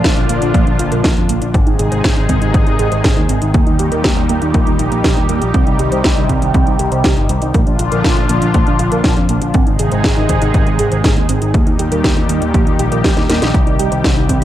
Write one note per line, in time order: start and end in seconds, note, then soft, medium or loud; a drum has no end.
0.00 1.52 A#2 medium
0.00 1.52 D3 medium
0.00 1.52 F3 medium
0.00 1.52 D4 medium
0.00 1.52 F4 medium
0.04 0.15 A#1 medium
0.04 0.12 F4 medium
0.04 kick loud
0.04 snare loud
0.04 closed hi-hat medium
0.17 0.27 A#1 medium
0.17 0.28 D4 medium
0.17 closed hi-hat soft
0.29 0.40 A#1 medium
0.29 0.37 A#3 medium
0.29 closed hi-hat medium
0.42 0.52 A#1 medium
0.42 0.49 D4 medium
0.42 closed hi-hat medium
0.54 0.65 A#1 loud
0.54 0.65 A#3 medium
0.54 kick loud
0.54 closed hi-hat medium
0.67 0.77 A#1 medium
0.67 0.71 D4 medium
0.67 closed hi-hat soft
0.79 0.90 A#1 medium
0.79 0.87 F4 loud
0.79 closed hi-hat medium
0.92 1.02 A#1 medium
0.92 0.96 A#4 medium
0.92 closed hi-hat medium
1.04 1.15 A#1 medium
1.04 1.12 F4 medium
1.04 kick loud
1.04 snare loud
1.04 closed hi-hat medium
1.17 1.27 F2 medium
1.17 1.28 D4 medium
1.17 closed hi-hat soft
1.29 1.40 A#1 medium
1.29 1.37 A#3 medium
1.29 closed hi-hat medium
1.42 1.52 A#1 medium
1.42 1.49 D4 medium
1.42 closed hi-hat medium
1.54 1.65 G#1 loud
1.54 3.52 C3 medium
1.54 5.50 D#3 medium
1.54 3.52 G#3 medium
1.54 1.65 C4 medium
1.54 3.52 D#4 medium
1.54 3.52 G#4 medium
1.54 kick loud
1.54 closed hi-hat soft
1.67 1.77 G#1 medium
1.67 1.71 D#4 medium
1.67 closed hi-hat soft
1.79 1.90 G#1 medium
1.79 1.87 G#4 loud
1.79 closed hi-hat medium
1.92 2.02 G#1 medium
1.92 1.96 C5 medium
1.92 closed hi-hat soft
2.04 2.15 G#1 loud
2.04 2.12 G#4 medium
2.04 kick loud
2.04 snare loud
2.04 closed hi-hat medium
2.17 2.27 G#1 medium
2.17 2.28 D#4 medium
2.17 closed hi-hat soft
2.29 2.40 G#1 medium
2.29 2.37 C4 medium
2.29 kick medium
2.29 closed hi-hat medium
2.42 2.52 G#1 medium
2.42 2.49 D#4 medium
2.42 closed hi-hat soft
2.54 2.65 G#1 loud
2.54 2.65 C4 medium
2.54 kick loud
2.54 closed hi-hat soft
2.67 2.77 G#1 medium
2.67 2.71 D#4 medium
2.67 closed hi-hat soft
2.79 2.90 G#1 medium
2.79 2.87 G#4 loud
2.79 closed hi-hat medium
2.92 3.02 G#1 medium
2.92 2.96 C5 medium
2.92 closed hi-hat soft
3.04 3.15 G#1 loud
3.04 3.12 G#4 medium
3.04 kick loud
3.04 snare loud
3.04 closed hi-hat soft
3.17 3.27 D#2 medium
3.17 3.28 D#4 medium
3.17 closed hi-hat soft
3.29 3.40 G#1 medium
3.29 3.37 C4 medium
3.29 closed hi-hat medium
3.42 3.52 G#1 medium
3.42 3.49 D#4 medium
3.42 closed hi-hat soft
3.54 3.65 D#2 loud
3.54 5.52 A#2 medium
3.54 7.50 G3 medium
3.54 3.66 A#3 medium
3.54 7.50 D#4 medium
3.54 7.50 G4 medium
3.54 kick loud
3.54 closed hi-hat soft
3.67 3.77 D#2 medium
3.67 3.71 D#4 medium
3.67 closed hi-hat soft
3.79 3.90 D#2 medium
3.79 3.87 G4 medium
3.79 closed hi-hat medium
3.92 4.02 D#2 medium
3.92 3.96 A#4 medium
3.92 closed hi-hat soft
4.04 4.15 D#2 medium
4.04 4.12 G4 medium
4.04 kick loud
4.04 snare loud
4.04 closed hi-hat soft
4.17 4.27 D#2 medium
4.17 4.28 D#4 medium
4.17 closed hi-hat soft
4.29 4.40 D#2 medium
4.29 4.37 A#3 medium
4.29 closed hi-hat medium
4.42 4.52 D#2 medium
4.42 4.49 D#4 medium
4.42 closed hi-hat soft
4.54 4.65 A#1 loud
4.54 4.66 A#3 medium
4.54 kick loud
4.54 closed hi-hat soft
4.67 4.77 D#2 medium
4.67 4.71 D#4 medium
4.67 closed hi-hat soft
4.79 4.90 A#1 medium
4.79 4.87 D#4 medium
4.79 closed hi-hat medium
4.92 5.02 A#1 medium
4.92 4.99 A#3 medium
4.92 closed hi-hat soft
5.04 5.15 A#1 medium
5.04 5.09 G4 medium
5.04 kick loud
5.04 snare loud
5.04 closed hi-hat soft
5.17 5.27 D#2 medium
5.17 5.24 D#4 medium
5.17 closed hi-hat soft
5.29 5.40 D#2 medium
5.29 5.41 A#3 medium
5.29 closed hi-hat medium
5.42 5.52 A#1 medium
5.42 5.49 G4 medium
5.42 closed hi-hat soft
5.54 5.65 C2 loud
5.54 7.52 C3 medium
5.54 7.52 D#3 medium
5.54 5.66 C4 medium
5.54 kick loud
5.54 closed hi-hat soft
5.67 5.77 C2 medium
5.67 5.71 D#4 medium
5.67 closed hi-hat soft
5.79 5.90 C2 medium
5.79 5.87 G4 loud
5.79 closed hi-hat medium
5.92 6.02 C2 medium
5.92 5.96 C5 medium
5.92 closed hi-hat soft
6.04 6.12 G4 medium
6.04 kick loud
6.04 snare loud
6.04 closed hi-hat medium
6.17 6.27 C2 medium
6.17 6.28 D#4 medium
6.17 closed hi-hat soft
6.29 6.40 C2 medium
6.29 6.37 C4 medium
6.29 kick medium
6.29 closed hi-hat medium
6.42 6.52 C2 medium
6.42 6.49 D#4 medium
6.42 closed hi-hat soft
6.54 6.65 C2 loud
6.54 6.66 C4 medium
6.54 kick loud
6.54 closed hi-hat soft
6.67 6.77 C2 medium
6.67 6.71 D#4 medium
6.67 closed hi-hat soft
6.79 6.90 C2 medium
6.79 6.87 G4 loud
6.79 closed hi-hat medium
6.92 7.02 C2 medium
6.92 6.96 C5 medium
6.92 closed hi-hat soft
7.04 7.12 G4 medium
7.04 kick loud
7.04 snare loud
7.04 closed hi-hat soft
7.17 7.27 G1 medium
7.17 7.28 D#4 medium
7.17 closed hi-hat soft
7.29 7.40 C2 medium
7.29 7.37 C4 medium
7.29 closed hi-hat medium
7.42 7.52 C2 medium
7.42 7.49 D#4 medium
7.42 closed hi-hat soft
7.54 7.65 A#1 loud
7.54 9.52 A#2 medium
7.54 9.52 D3 medium
7.54 9.52 F3 medium
7.54 7.66 A#3 medium
7.54 9.52 D4 medium
7.54 9.52 F4 medium
7.54 kick loud
7.54 closed hi-hat medium
7.67 7.77 A#1 medium
7.67 7.71 D4 medium
7.67 closed hi-hat soft
7.79 7.90 A#1 medium
7.79 7.87 F4 loud
7.79 closed hi-hat medium
7.92 8.02 A#1 medium
7.92 7.96 A#4 medium
7.92 closed hi-hat soft
8.04 8.12 F4 medium
8.04 kick loud
8.04 snare loud
8.04 closed hi-hat medium
8.17 8.27 A#1 medium
8.17 8.28 D4 medium
8.17 closed hi-hat soft
8.29 8.40 A#1 medium
8.29 8.37 A#3 medium
8.29 closed hi-hat medium
8.42 8.52 A#1 medium
8.42 8.49 D4 medium
8.42 closed hi-hat soft
8.54 8.65 A#1 loud
8.54 8.66 A#3 medium
8.54 kick loud
8.54 closed hi-hat medium
8.67 8.77 A#1 medium
8.67 8.71 D4 medium
8.67 closed hi-hat soft
8.79 8.90 A#1 medium
8.79 8.87 F4 loud
8.79 closed hi-hat medium
8.92 9.02 A#1 medium
8.92 8.96 A#4 medium
8.92 closed hi-hat medium
9.04 9.15 A#1 medium
9.04 9.12 F4 medium
9.04 kick loud
9.04 snare loud
9.04 closed hi-hat soft
9.17 9.27 F2 medium
9.17 9.28 D4 medium
9.17 closed hi-hat soft
9.29 9.40 A#1 medium
9.29 9.37 A#3 medium
9.29 closed hi-hat medium
9.42 9.52 A#1 medium
9.42 9.49 D4 medium
9.42 closed hi-hat medium
9.54 9.65 G#1 loud
9.54 11.52 C3 medium
9.54 14.44 D#3 medium
9.54 11.52 G#3 medium
9.54 9.66 C4 medium
9.54 11.52 D#4 medium
9.54 11.52 G#4 medium
9.54 kick loud
9.54 closed hi-hat soft
9.67 9.77 G#1 medium
9.67 9.71 D#4 medium
9.67 closed hi-hat soft
9.79 9.90 G#1 medium
9.79 9.87 G#4 loud
9.79 closed hi-hat medium
9.92 10.02 G#1 medium
9.92 9.96 C5 medium
9.92 closed hi-hat medium
10.04 10.15 G#1 loud
10.04 10.12 G#4 medium
10.04 kick loud
10.04 snare loud
10.04 closed hi-hat medium
10.17 10.27 G#1 medium
10.17 10.28 D#4 medium
10.17 closed hi-hat soft
10.29 10.40 G#1 medium
10.29 10.37 C4 medium
10.29 kick medium
10.29 closed hi-hat medium
10.42 10.52 G#1 medium
10.42 10.49 D#4 medium
10.42 closed hi-hat medium
10.54 10.65 G#1 loud
10.54 10.66 C4 medium
10.54 kick loud
10.54 closed hi-hat medium
10.67 10.77 G#1 medium
10.67 10.71 D#4 medium
10.67 closed hi-hat soft
10.79 10.90 G#1 medium
10.79 10.87 G#4 loud
10.79 closed hi-hat medium
10.92 11.02 G#1 medium
10.92 10.96 C5 medium
10.92 closed hi-hat medium
11.04 11.15 G#1 medium
11.04 11.12 G#4 medium
11.04 kick loud
11.04 snare loud
11.04 closed hi-hat medium
11.17 11.27 D#2 medium
11.17 11.28 D#4 medium
11.17 closed hi-hat soft
11.29 11.40 G#1 medium
11.29 11.37 C4 medium
11.29 closed hi-hat medium
11.42 11.52 G#1 medium
11.42 11.49 D#4 medium
11.42 closed hi-hat medium
11.54 11.65 D#2 loud
11.54 13.52 A#2 medium
11.54 14.44 G3 medium
11.54 11.66 A#3 medium
11.54 14.44 D#4 medium
11.54 14.44 G4 medium
11.54 kick loud
11.54 closed hi-hat medium
11.67 11.77 D#2 medium
11.67 11.71 D#4 medium
11.67 closed hi-hat soft
11.79 11.90 D#2 medium
11.79 11.87 G4 loud
11.79 closed hi-hat medium
11.92 12.02 D#2 medium
11.92 11.96 A#4 medium
11.92 closed hi-hat medium
12.04 12.12 G4 medium
12.04 kick loud
12.04 snare loud
12.04 closed hi-hat medium
12.17 12.27 D#2 medium
12.17 12.28 D#4 medium
12.17 closed hi-hat soft
12.29 12.40 D#2 medium
12.29 12.37 A#3 medium
12.29 closed hi-hat medium
12.42 12.52 D#2 medium
12.42 12.49 D#4 medium
12.42 closed hi-hat medium
12.54 12.65 A#1 loud
12.54 12.66 A#3 medium
12.54 kick loud
12.54 closed hi-hat medium
12.67 12.77 D#2 medium
12.67 12.71 D#4 medium
12.67 closed hi-hat soft
12.79 12.90 A#1 medium
12.79 12.87 G4 loud
12.79 closed hi-hat medium
12.92 13.02 A#1 medium
12.92 12.96 A#4 medium
12.92 closed hi-hat medium
13.04 13.15 A#1 medium
13.04 13.12 G4 medium
13.04 kick loud
13.04 snare loud
13.04 closed hi-hat medium
13.17 13.27 D#2 medium
13.17 13.28 D#4 medium
13.17 snare soft
13.17 closed hi-hat soft
13.29 13.40 D#2 medium
13.29 13.37 A#3 medium
13.29 snare medium
13.29 closed hi-hat loud
13.42 13.52 A#1 medium
13.42 13.49 D#4 medium
13.42 snare medium
13.42 closed hi-hat medium
13.54 13.65 C2 medium
13.54 14.44 C3 medium
13.54 13.65 C4 medium
13.54 kick loud
13.54 closed hi-hat medium
13.67 13.77 C2 medium
13.67 13.71 D#4 medium
13.67 closed hi-hat soft
13.79 13.90 C2 medium
13.79 13.87 G4 loud
13.79 closed hi-hat medium
13.92 14.02 C2 medium
13.92 13.96 C5 medium
13.92 closed hi-hat medium
14.04 14.15 C2 medium
14.04 14.12 G4 medium
14.04 kick loud
14.04 snare loud
14.04 closed hi-hat medium
14.17 14.27 C2 medium
14.17 14.28 D#4 medium
14.17 closed hi-hat soft
14.29 14.40 C2 medium
14.29 14.37 C4 medium
14.29 kick medium
14.29 closed hi-hat medium